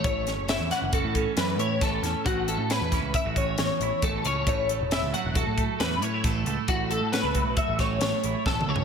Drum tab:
HH |x--x--x--x--x--x--x--x--x--x--|x--x--x--x--x--x--x--x--x--x--|x--x--x--x--x--x--x--x--x--x--|x--x--x--x--x--x--x--x--------|
SD |---o--o--o--------o-----o--o--|------o--o--------o-----------|------o-----------o-----o-----|------o--------o--o-----o-----|
T2 |------------------------------|------------------------------|------------------------------|--------------------------o---|
FT |------------------------------|------------------------------|------------------------------|----------------------------o-|
BD |o-----------o--o--------o-----|o--------o--o--o--------o-----|o-----------o--o--------o-----|o--------o--o--o--------o-----|